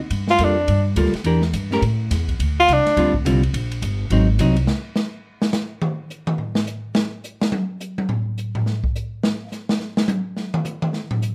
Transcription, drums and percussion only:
0.10 kick soft
0.10 ride medium
0.28 snare medium
0.38 kick soft
0.38 hi-hat pedal medium
0.38 ride medium
0.68 kick soft
0.68 ride medium
0.96 kick soft
0.96 hi-hat pedal medium
0.96 ride medium
1.05 snare soft
1.13 snare soft
1.13 ride soft
1.24 kick soft
1.24 ride medium
1.42 snare soft
1.53 kick soft
1.53 hi-hat pedal medium
1.53 ride medium
1.71 snare soft
1.82 kick soft
1.82 ride medium
2.11 kick soft
2.11 snare soft
2.11 hi-hat pedal medium
2.11 ride medium
2.28 kick medium
2.28 ride soft
2.39 kick soft
2.39 ride medium
2.68 kick soft
2.68 hi-hat pedal medium
2.68 ride medium
2.86 snare soft
2.86 ride soft
2.97 kick soft
2.97 ride medium
3.14 kick medium
3.26 hi-hat pedal medium
3.26 ride medium
3.43 ride soft
3.54 kick soft
3.54 ride medium
3.72 ride medium
3.82 kick soft
3.82 hi-hat pedal medium
3.82 ride medium
4.10 kick soft
4.10 ride medium
4.39 kick soft
4.39 hi-hat pedal medium
4.39 ride medium
4.56 ride soft
4.67 snare medium
4.96 snare medium
4.96 hi-hat pedal medium
5.42 snare loud
5.53 snare medium
5.53 hi-hat pedal medium
5.82 mid tom medium
6.10 hi-hat pedal medium
6.27 mid tom medium
6.38 floor tom medium
6.55 snare medium
6.67 hi-hat pedal medium
6.95 snare medium
7.24 hi-hat pedal medium
7.42 snare medium
7.52 high tom medium
7.80 hi-hat pedal medium
7.98 high tom medium
8.09 floor tom medium
8.38 hi-hat pedal soft
8.55 floor tom medium
8.66 snare soft
8.84 kick medium
8.95 hi-hat pedal medium
9.23 snare loud
9.52 snare soft
9.52 hi-hat pedal soft
9.69 snare medium
9.80 snare soft
9.97 snare medium
10.08 hi-hat pedal medium
10.08 high tom loud
10.37 snare soft
10.54 mid tom medium
10.65 hi-hat pedal medium
10.65 mid tom medium
10.82 mid tom medium
10.93 snare soft
11.11 floor tom loud
11.22 hi-hat pedal medium

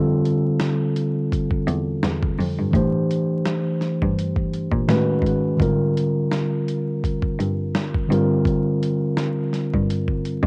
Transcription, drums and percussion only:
0.25 closed hi-hat medium
0.60 snare loud
0.60 closed hi-hat medium
0.96 closed hi-hat medium
1.32 kick medium
1.32 closed hi-hat medium
1.51 kick medium
1.68 closed hi-hat medium
2.03 snare loud
2.03 closed hi-hat medium
2.23 kick loud
2.40 open hi-hat soft
2.73 kick loud
2.73 closed hi-hat medium
3.11 closed hi-hat medium
3.46 snare loud
3.46 closed hi-hat medium
3.81 snare soft
3.81 closed hi-hat medium
4.02 kick medium
4.19 closed hi-hat medium
4.36 kick medium
4.54 closed hi-hat medium
4.72 kick medium
4.89 snare loud
4.89 closed hi-hat medium
5.22 kick medium
5.26 closed hi-hat medium
5.60 kick loud
5.60 closed hi-hat medium
5.97 closed hi-hat medium
6.31 snare loud
6.31 closed hi-hat medium
6.68 closed hi-hat medium
7.04 kick medium
7.04 closed hi-hat medium
7.22 kick medium
7.40 closed hi-hat medium
7.75 snare loud
7.75 closed hi-hat medium
7.94 kick loud
8.12 closed hi-hat medium
8.45 kick loud
8.45 closed hi-hat medium
8.83 closed hi-hat medium
9.17 snare loud
9.17 closed hi-hat medium
9.53 snare soft
9.53 closed hi-hat medium
9.74 kick medium
9.90 closed hi-hat medium
10.08 kick medium
10.25 closed hi-hat medium
10.43 kick medium

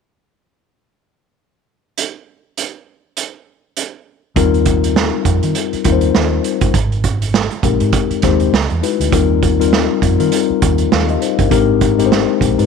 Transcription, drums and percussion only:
1.98 closed hi-hat medium
2.58 closed hi-hat soft
3.17 closed hi-hat soft
3.77 closed hi-hat soft
4.36 kick medium
4.36 closed hi-hat medium
4.54 closed hi-hat soft
4.66 kick medium
4.66 closed hi-hat medium
4.84 closed hi-hat medium
4.96 snare medium
5.25 kick medium
5.25 closed hi-hat medium
5.43 closed hi-hat soft
5.55 closed hi-hat medium
5.73 closed hi-hat soft
5.84 kick medium
5.84 closed hi-hat medium
6.01 closed hi-hat soft
6.15 snare medium
6.44 closed hi-hat medium
6.61 kick medium
6.61 closed hi-hat medium
6.74 kick medium
6.74 closed hi-hat medium
6.92 closed hi-hat soft
7.04 kick medium
7.04 closed hi-hat medium
7.22 closed hi-hat soft
7.34 snare medium
7.51 closed hi-hat soft
7.63 kick medium
7.63 closed hi-hat medium
7.80 closed hi-hat soft
7.93 kick medium
7.93 closed hi-hat medium
8.11 closed hi-hat soft
8.22 kick medium
8.22 snare soft
8.22 closed hi-hat medium
8.40 closed hi-hat soft
8.54 snare medium
8.70 closed hi-hat soft
8.83 closed hi-hat medium
9.01 closed hi-hat medium
9.12 kick loud
9.12 closed hi-hat medium
9.43 kick medium
9.43 closed hi-hat medium
9.61 closed hi-hat soft
9.73 snare medium
10.02 kick medium
10.02 closed hi-hat medium
10.20 closed hi-hat soft
10.32 closed hi-hat medium
10.62 kick medium
10.62 closed hi-hat medium
10.78 closed hi-hat soft
10.92 snare medium
11.09 closed hi-hat soft
11.22 closed hi-hat medium
11.39 kick medium
11.39 closed hi-hat medium
11.51 kick medium
11.51 closed hi-hat medium
11.81 kick medium
11.81 closed hi-hat medium
11.99 closed hi-hat soft
12.12 snare medium
12.41 kick medium
12.41 closed hi-hat medium
12.59 closed hi-hat soft

